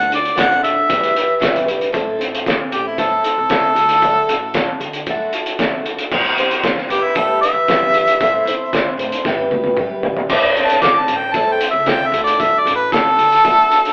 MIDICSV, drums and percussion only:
0, 0, Header, 1, 2, 480
1, 0, Start_track
1, 0, Tempo, 523104
1, 1777, Time_signature, 4, 2, 24, 8
1, 12780, End_track
2, 0, Start_track
2, 0, Title_t, "Drums"
2, 111, Note_on_c, 9, 42, 74
2, 203, Note_off_c, 9, 42, 0
2, 232, Note_on_c, 9, 42, 47
2, 324, Note_off_c, 9, 42, 0
2, 346, Note_on_c, 9, 36, 113
2, 346, Note_on_c, 9, 42, 102
2, 357, Note_on_c, 9, 38, 110
2, 438, Note_off_c, 9, 36, 0
2, 438, Note_off_c, 9, 42, 0
2, 449, Note_off_c, 9, 38, 0
2, 471, Note_on_c, 9, 42, 45
2, 563, Note_off_c, 9, 42, 0
2, 591, Note_on_c, 9, 42, 75
2, 682, Note_off_c, 9, 42, 0
2, 825, Note_on_c, 9, 36, 113
2, 827, Note_on_c, 9, 42, 101
2, 916, Note_off_c, 9, 36, 0
2, 919, Note_off_c, 9, 42, 0
2, 949, Note_on_c, 9, 42, 50
2, 1041, Note_off_c, 9, 42, 0
2, 1068, Note_on_c, 9, 42, 78
2, 1159, Note_off_c, 9, 42, 0
2, 1302, Note_on_c, 9, 36, 111
2, 1305, Note_on_c, 9, 42, 102
2, 1316, Note_on_c, 9, 38, 116
2, 1394, Note_off_c, 9, 36, 0
2, 1396, Note_off_c, 9, 42, 0
2, 1408, Note_off_c, 9, 38, 0
2, 1431, Note_on_c, 9, 42, 51
2, 1523, Note_off_c, 9, 42, 0
2, 1545, Note_on_c, 9, 42, 77
2, 1637, Note_off_c, 9, 42, 0
2, 1662, Note_on_c, 9, 42, 53
2, 1754, Note_off_c, 9, 42, 0
2, 1781, Note_on_c, 9, 36, 106
2, 1784, Note_on_c, 9, 42, 75
2, 1872, Note_off_c, 9, 36, 0
2, 1876, Note_off_c, 9, 42, 0
2, 2027, Note_on_c, 9, 42, 75
2, 2119, Note_off_c, 9, 42, 0
2, 2153, Note_on_c, 9, 42, 71
2, 2245, Note_off_c, 9, 42, 0
2, 2261, Note_on_c, 9, 36, 107
2, 2267, Note_on_c, 9, 42, 75
2, 2278, Note_on_c, 9, 38, 109
2, 2353, Note_off_c, 9, 36, 0
2, 2359, Note_off_c, 9, 42, 0
2, 2370, Note_off_c, 9, 38, 0
2, 2499, Note_on_c, 9, 42, 76
2, 2591, Note_off_c, 9, 42, 0
2, 2737, Note_on_c, 9, 36, 107
2, 2739, Note_on_c, 9, 42, 74
2, 2829, Note_off_c, 9, 36, 0
2, 2831, Note_off_c, 9, 42, 0
2, 2975, Note_on_c, 9, 42, 69
2, 3067, Note_off_c, 9, 42, 0
2, 3208, Note_on_c, 9, 42, 70
2, 3212, Note_on_c, 9, 36, 105
2, 3219, Note_on_c, 9, 38, 105
2, 3300, Note_off_c, 9, 42, 0
2, 3304, Note_off_c, 9, 36, 0
2, 3311, Note_off_c, 9, 38, 0
2, 3453, Note_on_c, 9, 42, 67
2, 3544, Note_off_c, 9, 42, 0
2, 3568, Note_on_c, 9, 42, 73
2, 3660, Note_off_c, 9, 42, 0
2, 3689, Note_on_c, 9, 42, 69
2, 3691, Note_on_c, 9, 36, 107
2, 3780, Note_off_c, 9, 42, 0
2, 3783, Note_off_c, 9, 36, 0
2, 3936, Note_on_c, 9, 42, 73
2, 4028, Note_off_c, 9, 42, 0
2, 4165, Note_on_c, 9, 42, 67
2, 4171, Note_on_c, 9, 36, 109
2, 4176, Note_on_c, 9, 38, 101
2, 4257, Note_off_c, 9, 42, 0
2, 4263, Note_off_c, 9, 36, 0
2, 4268, Note_off_c, 9, 38, 0
2, 4411, Note_on_c, 9, 42, 66
2, 4503, Note_off_c, 9, 42, 0
2, 4527, Note_on_c, 9, 42, 68
2, 4619, Note_off_c, 9, 42, 0
2, 4648, Note_on_c, 9, 42, 71
2, 4651, Note_on_c, 9, 36, 106
2, 4739, Note_off_c, 9, 42, 0
2, 4742, Note_off_c, 9, 36, 0
2, 4889, Note_on_c, 9, 42, 69
2, 4980, Note_off_c, 9, 42, 0
2, 5011, Note_on_c, 9, 42, 69
2, 5102, Note_off_c, 9, 42, 0
2, 5129, Note_on_c, 9, 42, 72
2, 5130, Note_on_c, 9, 36, 113
2, 5140, Note_on_c, 9, 38, 114
2, 5221, Note_off_c, 9, 42, 0
2, 5222, Note_off_c, 9, 36, 0
2, 5232, Note_off_c, 9, 38, 0
2, 5374, Note_on_c, 9, 42, 76
2, 5466, Note_off_c, 9, 42, 0
2, 5492, Note_on_c, 9, 42, 77
2, 5584, Note_off_c, 9, 42, 0
2, 5612, Note_on_c, 9, 36, 111
2, 5613, Note_on_c, 9, 49, 93
2, 5703, Note_off_c, 9, 36, 0
2, 5705, Note_off_c, 9, 49, 0
2, 5854, Note_on_c, 9, 42, 75
2, 5945, Note_off_c, 9, 42, 0
2, 5973, Note_on_c, 9, 42, 71
2, 6064, Note_off_c, 9, 42, 0
2, 6087, Note_on_c, 9, 42, 76
2, 6089, Note_on_c, 9, 36, 110
2, 6098, Note_on_c, 9, 38, 111
2, 6179, Note_off_c, 9, 42, 0
2, 6181, Note_off_c, 9, 36, 0
2, 6190, Note_off_c, 9, 38, 0
2, 6224, Note_on_c, 9, 38, 34
2, 6316, Note_off_c, 9, 38, 0
2, 6334, Note_on_c, 9, 42, 78
2, 6426, Note_off_c, 9, 42, 0
2, 6564, Note_on_c, 9, 42, 74
2, 6569, Note_on_c, 9, 36, 112
2, 6656, Note_off_c, 9, 42, 0
2, 6661, Note_off_c, 9, 36, 0
2, 6819, Note_on_c, 9, 42, 76
2, 6911, Note_off_c, 9, 42, 0
2, 7050, Note_on_c, 9, 42, 73
2, 7051, Note_on_c, 9, 36, 105
2, 7061, Note_on_c, 9, 38, 107
2, 7142, Note_off_c, 9, 42, 0
2, 7143, Note_off_c, 9, 36, 0
2, 7153, Note_off_c, 9, 38, 0
2, 7287, Note_on_c, 9, 42, 74
2, 7378, Note_off_c, 9, 42, 0
2, 7410, Note_on_c, 9, 42, 73
2, 7502, Note_off_c, 9, 42, 0
2, 7530, Note_on_c, 9, 42, 70
2, 7531, Note_on_c, 9, 36, 108
2, 7622, Note_off_c, 9, 36, 0
2, 7622, Note_off_c, 9, 42, 0
2, 7776, Note_on_c, 9, 42, 70
2, 7868, Note_off_c, 9, 42, 0
2, 8012, Note_on_c, 9, 36, 111
2, 8014, Note_on_c, 9, 42, 70
2, 8025, Note_on_c, 9, 38, 108
2, 8103, Note_off_c, 9, 36, 0
2, 8105, Note_off_c, 9, 42, 0
2, 8116, Note_off_c, 9, 38, 0
2, 8252, Note_on_c, 9, 42, 72
2, 8343, Note_off_c, 9, 42, 0
2, 8371, Note_on_c, 9, 42, 67
2, 8462, Note_off_c, 9, 42, 0
2, 8488, Note_on_c, 9, 36, 114
2, 8494, Note_on_c, 9, 38, 64
2, 8580, Note_off_c, 9, 36, 0
2, 8586, Note_off_c, 9, 38, 0
2, 8728, Note_on_c, 9, 48, 74
2, 8820, Note_off_c, 9, 48, 0
2, 8843, Note_on_c, 9, 48, 66
2, 8934, Note_off_c, 9, 48, 0
2, 8961, Note_on_c, 9, 47, 83
2, 8967, Note_on_c, 9, 36, 112
2, 9053, Note_off_c, 9, 47, 0
2, 9059, Note_off_c, 9, 36, 0
2, 9206, Note_on_c, 9, 43, 96
2, 9298, Note_off_c, 9, 43, 0
2, 9328, Note_on_c, 9, 43, 89
2, 9420, Note_off_c, 9, 43, 0
2, 9447, Note_on_c, 9, 55, 78
2, 9447, Note_on_c, 9, 57, 94
2, 9449, Note_on_c, 9, 36, 109
2, 9539, Note_off_c, 9, 55, 0
2, 9539, Note_off_c, 9, 57, 0
2, 9540, Note_off_c, 9, 36, 0
2, 9695, Note_on_c, 9, 42, 79
2, 9787, Note_off_c, 9, 42, 0
2, 9815, Note_on_c, 9, 42, 74
2, 9907, Note_off_c, 9, 42, 0
2, 9928, Note_on_c, 9, 36, 107
2, 9929, Note_on_c, 9, 42, 73
2, 9940, Note_on_c, 9, 38, 106
2, 10020, Note_off_c, 9, 36, 0
2, 10021, Note_off_c, 9, 42, 0
2, 10032, Note_off_c, 9, 38, 0
2, 10167, Note_on_c, 9, 42, 79
2, 10259, Note_off_c, 9, 42, 0
2, 10405, Note_on_c, 9, 42, 76
2, 10407, Note_on_c, 9, 36, 114
2, 10497, Note_off_c, 9, 42, 0
2, 10499, Note_off_c, 9, 36, 0
2, 10650, Note_on_c, 9, 42, 81
2, 10742, Note_off_c, 9, 42, 0
2, 10886, Note_on_c, 9, 42, 73
2, 10890, Note_on_c, 9, 36, 115
2, 10897, Note_on_c, 9, 38, 114
2, 10978, Note_off_c, 9, 42, 0
2, 10981, Note_off_c, 9, 36, 0
2, 10989, Note_off_c, 9, 38, 0
2, 11136, Note_on_c, 9, 42, 71
2, 11228, Note_off_c, 9, 42, 0
2, 11260, Note_on_c, 9, 42, 77
2, 11352, Note_off_c, 9, 42, 0
2, 11376, Note_on_c, 9, 36, 105
2, 11381, Note_on_c, 9, 42, 72
2, 11468, Note_off_c, 9, 36, 0
2, 11473, Note_off_c, 9, 42, 0
2, 11624, Note_on_c, 9, 42, 75
2, 11716, Note_off_c, 9, 42, 0
2, 11858, Note_on_c, 9, 36, 117
2, 11865, Note_on_c, 9, 42, 76
2, 11876, Note_on_c, 9, 38, 114
2, 11950, Note_off_c, 9, 36, 0
2, 11957, Note_off_c, 9, 42, 0
2, 11968, Note_off_c, 9, 38, 0
2, 12101, Note_on_c, 9, 42, 72
2, 12193, Note_off_c, 9, 42, 0
2, 12224, Note_on_c, 9, 42, 67
2, 12316, Note_off_c, 9, 42, 0
2, 12340, Note_on_c, 9, 36, 118
2, 12347, Note_on_c, 9, 42, 70
2, 12432, Note_off_c, 9, 36, 0
2, 12439, Note_off_c, 9, 42, 0
2, 12584, Note_on_c, 9, 42, 72
2, 12676, Note_off_c, 9, 42, 0
2, 12711, Note_on_c, 9, 42, 68
2, 12780, Note_off_c, 9, 42, 0
2, 12780, End_track
0, 0, End_of_file